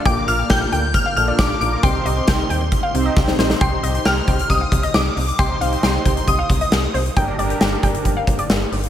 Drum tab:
HH |x-x-x-x-x-x-x-x-|x-x-x-x-x-x-----|x-xx--xxx-xx--ox|x-xx--xxx-xx--ox|
SD |----o-------o---|----o-------oooo|----o-------o---|----o-------o---|
BD |o---o---o---o---|o---o---o---o---|o-----o-o-o-----|o-----o-o-o-----|

HH |x-xx--xxx-xx--ox|
SD |----o-------o---|
BD |o-----o-o-o-----|